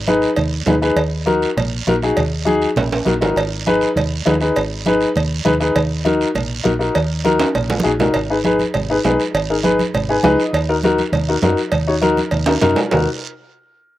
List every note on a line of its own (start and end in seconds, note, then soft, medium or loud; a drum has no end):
0.00 0.25 G#1 medium
0.07 0.28 D#4 medium
0.07 0.29 G#4 medium
0.07 0.29 B4 medium
0.07 high conga medium
0.07 short guiro medium
0.22 short guiro medium
0.36 0.61 D#2 loud
0.36 cowbell medium
0.36 high conga soft
0.36 low conga medium
0.36 long guiro medium
0.66 0.91 D#2 loud
0.66 0.73 D#4 medium
0.66 0.73 G#4 medium
0.66 0.73 B4 medium
0.66 high conga medium
0.66 low conga medium
0.66 low timbale medium
0.66 short guiro medium
0.82 0.97 D#4 medium
0.82 0.97 G#4 medium
0.82 0.97 B4 medium
0.82 short guiro medium
0.96 1.44 D#2 medium
0.96 cowbell medium
0.96 high conga soft
0.96 long guiro medium
1.26 1.47 D#4 medium
1.26 1.48 F#4 medium
1.26 1.48 A#4 loud
1.26 high conga medium
1.26 short guiro medium
1.42 short guiro medium
1.57 1.81 A#1 medium
1.57 cowbell medium
1.57 high conga soft
1.57 low conga medium
1.57 long guiro medium
1.87 2.11 A#1 loud
1.87 1.92 D#4 medium
1.87 1.92 F#4 medium
1.87 1.93 A#4 loud
1.87 high conga medium
1.87 short guiro medium
2.02 2.18 D#4 medium
2.02 2.19 F#4 medium
2.02 2.19 G#4 medium
2.02 short guiro medium
2.17 2.65 D#2 medium
2.17 cowbell medium
2.17 high conga soft
2.17 low conga medium
2.17 long guiro medium
2.45 2.67 D#4 medium
2.45 2.67 F#4 medium
2.45 2.68 G#4 loud
2.45 high conga medium
2.45 short guiro medium
2.62 short guiro medium
2.76 3.01 A#1 loud
2.76 cowbell medium
2.76 high conga soft
2.76 low conga medium
2.76 high timbale loud
2.76 long guiro medium
2.92 high timbale loud
3.05 3.20 A#1 medium
3.05 3.11 D#4 medium
3.05 3.12 F#4 medium
3.05 3.12 A#4 medium
3.05 high conga medium
3.05 short guiro medium
3.21 3.35 G#1 medium
3.21 3.36 D#4 medium
3.21 3.36 F#4 medium
3.21 3.37 A#4 medium
3.21 low timbale medium
3.21 short guiro medium
3.36 3.84 G#1 medium
3.36 cowbell loud
3.36 high conga soft
3.36 long guiro medium
3.66 3.88 D#4 medium
3.66 3.87 G#4 medium
3.66 3.88 B4 loud
3.66 high conga medium
3.66 short guiro medium
3.81 short guiro medium
3.96 4.20 D#2 medium
3.96 cowbell medium
3.96 high conga soft
3.96 low conga medium
3.96 long guiro medium
4.26 4.50 D#2 loud
4.26 4.31 D#4 medium
4.26 4.32 G#4 medium
4.26 4.32 B4 medium
4.26 high conga medium
4.26 low timbale medium
4.26 short guiro medium
4.41 4.57 D#4 medium
4.41 4.57 G#4 medium
4.41 4.57 B4 medium
4.41 short guiro medium
4.56 5.04 G#1 medium
4.56 cowbell medium
4.56 high conga soft
4.56 long guiro medium
4.86 5.07 D#4 medium
4.86 5.07 G#4 medium
4.86 5.08 B4 medium
4.86 high conga medium
4.86 short guiro medium
5.01 short guiro medium
5.16 5.40 D#2 loud
5.16 cowbell medium
5.16 high conga soft
5.16 low conga medium
5.16 long guiro medium
5.45 5.70 D#2 medium
5.45 5.51 D#4 medium
5.45 5.51 G#4 medium
5.45 5.51 B4 loud
5.45 high conga medium
5.45 low conga medium
5.45 short guiro medium
5.60 5.75 D#4 medium
5.60 5.76 G#4 medium
5.60 5.76 B4 medium
5.60 short guiro medium
5.76 6.23 D#2 loud
5.76 cowbell loud
5.76 high conga soft
5.76 low conga medium
5.76 long guiro medium
6.05 6.26 D#4 medium
6.05 6.27 F#4 medium
6.05 6.27 A#4 medium
6.05 high conga medium
6.05 short guiro medium
6.21 short guiro medium
6.35 6.59 A#1 loud
6.35 cowbell medium
6.35 high conga soft
6.35 low conga medium
6.35 long guiro medium
6.64 6.89 A#1 loud
6.64 6.70 D#4 medium
6.64 6.70 F#4 medium
6.64 6.70 A#4 medium
6.64 high conga medium
6.64 short guiro medium
6.79 6.95 D#4 medium
6.79 6.96 F#4 medium
6.79 6.96 A#4 medium
6.79 short guiro medium
6.95 7.43 D#2 loud
6.95 cowbell loud
6.95 high conga soft
6.95 long guiro medium
7.24 7.46 D#4 medium
7.24 7.46 F#4 medium
7.24 7.46 A#4 loud
7.24 high conga medium
7.24 short guiro medium
7.40 high timbale medium
7.40 short guiro medium
7.55 7.79 A#1 loud
7.55 cowbell medium
7.55 high conga soft
7.55 low conga medium
7.55 long guiro medium
7.70 high conga medium
7.70 low timbale loud
7.80 7.89 D#4 medium
7.80 7.89 F#4 medium
7.80 7.89 G#4 medium
7.80 high conga medium
7.85 8.09 A#1 medium
7.85 short guiro medium
8.00 8.15 D#4 medium
8.00 8.15 F#4 medium
8.00 8.15 A#4 medium
8.00 low conga medium
8.00 low timbale medium
8.00 short guiro medium
8.14 8.63 G#1 medium
8.14 cowbell medium
8.14 long guiro medium
8.30 8.35 D#4 medium
8.30 8.35 G#4 medium
8.30 8.35 B4 medium
8.44 8.60 D#4 medium
8.44 8.60 G#4 medium
8.44 8.60 B4 medium
8.44 high conga medium
8.44 short guiro medium
8.59 high conga medium
8.59 short guiro medium
8.74 8.98 G#1 medium
8.74 cowbell medium
8.74 low conga medium
8.74 long guiro medium
8.90 8.95 D#4 medium
8.90 8.95 G#4 medium
8.90 8.95 B4 medium
9.04 9.16 B1 loud
9.04 9.20 D#4 medium
9.04 9.20 G#4 medium
9.04 9.20 B4 medium
9.04 high conga medium
9.04 low timbale medium
9.04 short guiro medium
9.20 short guiro medium
9.34 9.82 G#1 loud
9.34 cowbell loud
9.34 long guiro medium
9.50 9.55 D#4 medium
9.50 9.55 G#4 medium
9.50 9.55 A#4 medium
9.63 9.79 D#4 medium
9.63 9.79 G#4 medium
9.63 9.80 B4 loud
9.63 high conga medium
9.63 short guiro medium
9.79 high conga medium
9.79 short guiro medium
9.94 10.18 G#1 medium
9.94 cowbell medium
9.94 low conga medium
9.94 long guiro medium
10.09 10.14 D#4 medium
10.09 10.14 G#4 medium
10.09 10.15 B4 medium
10.09 10.23 G#5 medium
10.23 10.36 C#2 loud
10.23 10.39 D#4 medium
10.23 10.39 G#4 medium
10.23 10.39 B4 loud
10.23 10.51 D#5 medium
10.23 high conga medium
10.23 low timbale medium
10.23 short guiro medium
10.40 short guiro medium
10.53 11.01 D#2 loud
10.53 cowbell loud
10.53 long guiro medium
10.69 10.74 D#4 medium
10.69 10.74 F#4 medium
10.69 10.74 A#4 medium
10.83 10.99 D#4 medium
10.83 10.99 F#4 medium
10.83 10.99 A#4 loud
10.83 high conga medium
10.83 short guiro medium
10.98 high conga medium
10.98 short guiro medium
11.12 11.36 D#2 medium
11.12 cowbell medium
11.12 low conga medium
11.12 long guiro medium
11.29 11.33 D#4 medium
11.29 11.34 F#4 medium
11.29 11.34 A#4 medium
11.42 11.54 F#2 loud
11.42 11.58 D#4 medium
11.42 11.59 F#4 medium
11.42 11.59 A#4 medium
11.42 high conga medium
11.42 low timbale medium
11.42 short guiro medium
11.57 short guiro medium
11.72 12.20 D#2 medium
11.72 cowbell loud
11.72 low conga medium
11.72 long guiro medium
11.87 11.93 D#4 medium
11.87 11.93 F#4 medium
11.87 11.93 C#5 medium
12.01 12.18 D#4 medium
12.01 12.18 F#4 medium
12.01 12.18 A#4 loud
12.01 high conga medium
12.01 short guiro medium
12.17 high conga medium
12.17 short guiro medium
12.31 12.56 D#2 loud
12.31 cowbell medium
12.31 low conga medium
12.31 long guiro medium
12.46 12.52 D#4 medium
12.46 12.52 F#4 medium
12.46 12.53 A#4 medium
12.46 high timbale loud
12.61 12.74 F#2 loud
12.61 12.78 D#4 medium
12.61 12.78 F#4 medium
12.61 12.78 A#4 loud
12.61 high conga medium
12.61 low conga medium
12.61 high timbale medium
12.61 short guiro medium
12.76 low timbale loud
12.76 short guiro medium
12.91 13.06 D#2 loud
12.91 13.06 D#4 medium
12.91 13.06 F#4 medium
12.91 13.06 A#4 medium
12.91 low conga loud
12.91 low timbale loud
12.91 long guiro medium